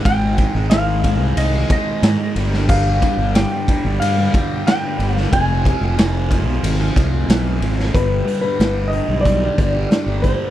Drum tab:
CC |----------------|x---------------|----------------|----------------|
RD |x-x-x-x-x-x-x-x-|--x-x-x-x-x-x-x-|x-x-x-x-x-x-x-x-|----------------|
HH |----------------|----------------|----------------|x-x-x-x-x-x-x-x-|
SD |----o-------o--o|----o-------o--o|----o-------o--o|----o-------o---|
BD |o-o---o---o-----|o-o---o---o-----|o-o---o---o-----|o-------o-o---o-|